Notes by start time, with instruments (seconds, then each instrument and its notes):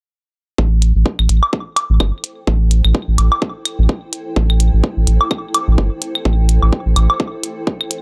0.58 analog synth bass A1, ambient pad E4, kick
0.71 ambient pad C5
0.82 ambient pad A4, closed hi-hat
0.95 analog synth bass A1
1.06 kick
1.19 analog synth bass A1, claves
1.24 ambient pad G5
1.29 analog synth bass A1, closed hi-hat
1.43 low woodblock
1.53 kick
1.76 closed hi-hat, low woodblock
1.90 analog synth bass A1
2.00 analog synth bass G1, kick, claves
2.24 closed hi-hat
2.47 analog synth bass A1, kick
2.71 closed hi-hat
2.84 analog synth bass A1, claves
2.95 kick
3.08 analog synth bass A1
3.18 analog synth bass A1, closed hi-hat, low woodblock
3.32 low woodblock
3.42 kick
3.65 closed hi-hat, claves
3.79 analog synth bass A1
3.89 kick
4.13 closed hi-hat
4.36 analog synth bass A1, kick
4.50 claves
4.60 closed hi-hat
4.73 analog synth bass A1
4.84 kick
4.97 analog synth bass A1
5.07 analog synth bass A1, closed hi-hat
5.21 low woodblock
5.31 kick, claves
5.54 closed hi-hat, low woodblock
5.68 analog synth bass A1
5.78 analog synth bass G1, kick
6.02 closed hi-hat
6.15 claves
6.25 analog synth bass A1, kick
6.49 closed hi-hat
6.62 analog synth bass A1, low woodblock
6.73 kick
6.86 analog synth bass A1
6.96 analog synth bass A1, closed hi-hat, claves, low woodblock
7.10 low woodblock
7.20 kick
7.44 closed hi-hat
7.67 kick
7.81 claves
7.91 closed hi-hat